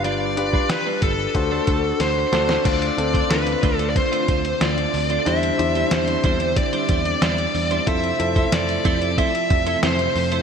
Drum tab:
CC |----------------|x---------------|----------------|----------------|
HH |x-x-x-x-x-x-x-x-|xxxxxxxxxxxxxxox|xxxxxxxxxxxxxxox|xxxxxxxxxxxxxxox|
SD |----o-------o-oo|----o-------o---|----o-------o---|----o-------o---|
BD |---o--o-o-o-----|o--o--o-o-o-----|------o-o-o-----|o--o--o-o-o-----|